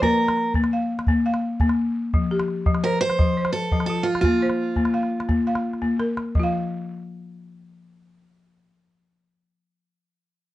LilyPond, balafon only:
<<
  \new Staff \with { instrumentName = "Balafon" } { \time 12/8 \key bes \lydian \tempo 4. = 114 f'8 r4. f''4. f''4. r4 | r8 g'4. c''4. c''4. f'4~ | f'8 c''4. f''4. f''4. bes'4~ | bes'8 r1 r4. |
r1. | }
  \new Staff \with { instrumentName = "Balafon" } { \time 12/8 \key bes \lydian bes4 r8 bes4 r8 bes4 r8 bes4 r8 | f4 r8 f4 r8 f4 r8 f4 r8 | bes4 r8 bes4 r8 bes4 r8 bes4 r8 | <f f' f''>1.~ |
<f f' f''>1. | }
>>